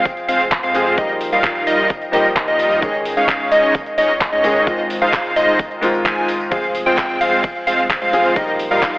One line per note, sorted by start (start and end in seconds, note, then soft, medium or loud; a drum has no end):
0.00 0.71 F3 medium
0.00 0.72 G#3 medium
0.00 0.72 C4 medium
0.00 0.72 G#4 medium
0.05 kick loud
0.05 closed hi-hat loud
0.05 tambourine soft
0.17 closed hi-hat soft
0.17 tambourine soft
0.28 0.61 F1 loud
0.28 0.42 G#3 medium
0.28 0.42 C4 medium
0.28 0.42 F4 medium
0.28 0.42 C5 medium
0.28 0.42 F5 loud
0.28 open hi-hat loud
0.28 tambourine medium
0.40 closed hi-hat soft
0.40 tambourine soft
0.52 kick loud
0.52 clap loud
0.52 closed hi-hat loud
0.52 tambourine soft
0.63 0.95 F2 loud
0.63 0.95 G#3 medium
0.63 0.95 C4 medium
0.63 0.95 F4 medium
0.63 0.95 C5 medium
0.63 0.95 F5 medium
0.63 closed hi-hat soft
0.63 tambourine soft
0.74 0.95 F3 medium
0.74 0.95 G#3 medium
0.74 0.95 C4 medium
0.74 0.95 G#4 medium
0.74 open hi-hat loud
0.74 tambourine medium
0.86 closed hi-hat soft
0.86 tambourine soft
0.96 1.30 D#1 loud
0.96 2.10 F3 medium
0.96 1.11 G3 medium
0.96 2.10 A#3 medium
0.96 1.11 D#4 medium
0.96 2.11 D#4 medium
0.96 1.11 F4 medium
0.96 2.11 G4 medium
0.96 1.11 A#4 medium
0.96 1.11 D#5 medium
0.96 kick loud
0.96 closed hi-hat loud
0.96 tambourine soft
1.09 closed hi-hat soft
1.09 tambourine soft
1.21 open hi-hat loud
1.21 tambourine medium
1.32 1.65 D#1 loud
1.32 1.64 G3 loud
1.32 1.64 D#4 medium
1.32 1.64 F4 medium
1.32 1.64 A#4 medium
1.32 1.64 F5 loud
1.32 closed hi-hat soft
1.32 tambourine soft
1.44 kick loud
1.44 clap loud
1.44 closed hi-hat medium
1.44 tambourine soft
1.55 closed hi-hat soft
1.55 tambourine soft
1.67 1.87 D#1 medium
1.67 1.89 G3 loud
1.67 1.89 D#4 medium
1.67 1.89 F4 medium
1.67 1.89 A#4 medium
1.67 1.89 D#5 loud
1.67 open hi-hat loud
1.67 tambourine medium
1.79 tambourine soft
1.90 kick loud
1.90 closed hi-hat loud
1.90 tambourine soft
2.02 closed hi-hat soft
2.02 tambourine soft
2.12 2.46 D#1 loud
2.12 2.79 F3 loud
2.12 2.27 G3 medium
2.12 2.79 A#3 medium
2.12 2.27 D#4 medium
2.12 2.80 D#4 medium
2.12 2.27 F4 medium
2.12 2.80 G4 loud
2.12 2.27 A#4 medium
2.12 2.27 D#5 loud
2.12 open hi-hat loud
2.12 tambourine medium
2.25 closed hi-hat soft
2.25 tambourine soft
2.36 kick loud
2.36 clap loud
2.36 closed hi-hat loud
2.36 tambourine soft
2.48 2.80 D#2 loud
2.48 2.80 G3 medium
2.48 2.80 D#4 medium
2.48 2.80 F4 medium
2.48 2.80 A#4 medium
2.48 2.80 D#5 medium
2.48 closed hi-hat soft
2.48 tambourine soft
2.59 open hi-hat loud
2.59 tambourine medium
2.71 closed hi-hat soft
2.71 tambourine soft
2.81 3.15 C#2 loud
2.81 4.41 D#3 medium
2.81 4.41 G#3 medium
2.81 2.96 G#3 medium
2.81 2.96 C#4 medium
2.81 4.41 C#4 medium
2.81 2.96 D#4 medium
2.81 4.42 G#4 medium
2.81 2.96 C#5 medium
2.81 2.96 D#5 medium
2.81 kick loud
2.81 closed hi-hat medium
2.81 tambourine soft
2.94 closed hi-hat soft
2.94 tambourine soft
3.05 open hi-hat loud
3.05 tambourine medium
3.17 3.49 C#2 loud
3.17 3.49 G#3 loud
3.17 3.49 C#4 medium
3.17 3.49 D#4 medium
3.17 3.49 C#5 medium
3.17 3.49 F5 loud
3.17 closed hi-hat soft
3.17 tambourine soft
3.29 kick loud
3.29 clap loud
3.29 closed hi-hat medium
3.29 tambourine soft
3.40 closed hi-hat soft
3.40 tambourine soft
3.52 3.71 C#2 loud
3.52 3.74 G#3 loud
3.52 3.74 C#4 medium
3.52 3.74 D#4 medium
3.52 3.74 C#5 medium
3.52 3.73 D#5 loud
3.52 3.74 D#5 loud
3.52 open hi-hat loud
3.52 tambourine medium
3.63 closed hi-hat soft
3.63 tambourine soft
3.75 kick loud
3.75 closed hi-hat medium
3.75 tambourine soft
3.86 closed hi-hat soft
3.86 tambourine soft
3.98 4.30 C#2 loud
3.98 4.12 G#3 medium
3.98 4.12 C#4 medium
3.98 4.12 D#4 medium
3.98 4.12 C#5 medium
3.98 4.11 D#5 loud
3.98 4.12 D#5 loud
3.98 open hi-hat loud
3.98 tambourine medium
4.09 closed hi-hat soft
4.09 tambourine soft
4.21 kick loud
4.21 clap loud
4.21 closed hi-hat medium
4.21 tambourine soft
4.32 4.65 C#2 medium
4.32 4.64 G#3 medium
4.32 4.64 C#4 medium
4.32 4.64 D#4 medium
4.32 4.64 C#5 medium
4.32 4.64 D#5 medium
4.32 closed hi-hat soft
4.32 tambourine soft
4.43 4.64 G#2 medium
4.43 4.64 D#3 medium
4.43 4.64 G#3 medium
4.43 4.64 C#4 medium
4.43 4.65 G#4 loud
4.43 open hi-hat loud
4.43 tambourine medium
4.56 closed hi-hat soft
4.56 tambourine soft
4.66 4.99 G#1 loud
4.66 5.79 G#2 medium
4.66 5.79 D#3 medium
4.66 4.81 G#3 medium
4.66 5.80 G#3 medium
4.66 5.80 C4 medium
4.66 4.81 D#4 medium
4.66 4.81 F4 medium
4.66 5.80 F4 medium
4.66 4.81 C5 medium
4.66 4.81 D#5 medium
4.66 kick loud
4.66 closed hi-hat medium
4.66 tambourine soft
4.79 closed hi-hat soft
4.79 tambourine soft
4.90 open hi-hat loud
4.90 tambourine medium
5.02 5.34 G#1 loud
5.02 5.34 G#3 loud
5.02 5.33 D#4 medium
5.02 5.33 F4 medium
5.02 5.33 C5 medium
5.02 5.33 F5 loud
5.02 5.34 F5 loud
5.02 closed hi-hat soft
5.02 tambourine soft
5.13 kick loud
5.13 clap loud
5.13 closed hi-hat medium
5.13 tambourine soft
5.25 closed hi-hat soft
5.25 tambourine soft
5.36 5.56 G#1 loud
5.36 5.58 G#3 loud
5.36 5.58 D#4 medium
5.36 5.58 F4 medium
5.36 5.58 C5 medium
5.36 5.58 D#5 loud
5.36 open hi-hat loud
5.36 tambourine medium
5.48 closed hi-hat soft
5.48 tambourine soft
5.59 kick loud
5.59 closed hi-hat medium
5.59 tambourine soft
5.71 closed hi-hat soft
5.71 tambourine soft
5.81 6.48 G#2 loud
5.81 6.49 D#3 medium
5.81 6.49 G#3 medium
5.81 6.49 C4 medium
5.81 6.49 F4 loud
5.81 open hi-hat loud
5.81 tambourine medium
5.94 closed hi-hat soft
5.94 tambourine soft
6.05 6.25 G#1 medium
6.05 6.27 G#3 medium
6.05 6.27 D#4 medium
6.05 6.27 F4 medium
6.05 6.27 C5 medium
6.05 6.27 G#5 medium
6.05 kick loud
6.05 clap loud
6.05 closed hi-hat medium
6.05 tambourine soft
6.17 closed hi-hat soft
6.17 tambourine soft
6.28 open hi-hat loud
6.28 tambourine medium
6.40 closed hi-hat soft
6.40 tambourine soft
6.50 6.84 F1 loud
6.50 8.10 F3 medium
6.50 8.10 G#3 medium
6.50 6.65 G#3 medium
6.50 6.65 C4 medium
6.50 8.11 C4 medium
6.50 6.65 F4 medium
6.50 8.11 G#4 medium
6.50 6.65 C5 medium
6.50 6.65 F5 medium
6.50 kick loud
6.50 closed hi-hat medium
6.50 ride medium
6.50 tambourine soft
6.63 closed hi-hat soft
6.63 tambourine soft
6.75 open hi-hat loud
6.75 tambourine medium
6.86 7.19 F1 loud
6.86 7.18 G#3 medium
6.86 7.18 C4 medium
6.86 7.18 F4 medium
6.86 7.18 C5 medium
6.86 7.18 G5 loud
6.86 closed hi-hat soft
6.86 tambourine soft
6.98 kick loud
6.98 clap loud
6.98 closed hi-hat medium
6.98 ride medium
7.09 closed hi-hat soft
7.09 tambourine soft
7.21 7.40 F1 loud
7.21 7.43 G#3 loud
7.21 7.43 C4 medium
7.21 7.43 F4 medium
7.21 7.43 C5 medium
7.21 7.43 F5 loud
7.21 open hi-hat loud
7.21 tambourine medium
7.32 closed hi-hat soft
7.32 tambourine soft
7.44 kick loud
7.44 closed hi-hat medium
7.44 ride medium
7.44 tambourine soft
7.56 closed hi-hat soft
7.56 tambourine soft
7.67 7.99 F1 loud
7.67 7.81 G#3 medium
7.67 7.81 C4 medium
7.67 7.81 F4 medium
7.67 7.81 C5 medium
7.67 7.81 F5 loud
7.67 open hi-hat loud
7.67 tambourine medium
7.79 closed hi-hat soft
7.79 tambourine soft
7.90 kick loud
7.90 clap loud
7.90 closed hi-hat medium
7.90 ride medium
7.90 tambourine soft
8.02 8.34 F1 medium
8.02 8.33 G#3 medium
8.02 8.34 C4 medium
8.02 8.33 F4 medium
8.02 8.33 C5 medium
8.02 8.33 F5 medium
8.02 closed hi-hat soft
8.02 tambourine soft
8.13 8.33 F3 medium
8.13 8.33 G#3 medium
8.13 8.34 C4 medium
8.13 8.34 G#4 loud
8.13 open hi-hat loud
8.13 tambourine medium
8.25 closed hi-hat soft
8.25 tambourine soft
8.35 8.69 D#1 loud
8.35 8.98 F3 medium
8.35 8.50 G3 medium
8.35 8.98 A#3 medium
8.35 8.50 D#4 medium
8.35 8.98 D#4 medium
8.35 8.50 F4 medium
8.35 8.98 G4 medium
8.35 8.50 A#4 medium
8.35 8.50 D#5 medium
8.35 kick loud
8.35 closed hi-hat medium
8.35 ride medium
8.35 tambourine soft
8.48 closed hi-hat soft
8.48 tambourine soft
8.59 open hi-hat loud
8.59 tambourine medium
8.71 8.98 D#1 loud
8.71 8.98 G3 loud
8.71 8.98 D#4 medium
8.71 8.98 F4 medium
8.71 8.98 A#4 medium
8.71 8.98 F5 loud
8.71 tambourine soft
8.82 kick loud
8.82 clap loud
8.82 closed hi-hat medium
8.82 ride medium
8.82 tambourine soft
8.94 closed hi-hat soft
8.94 tambourine soft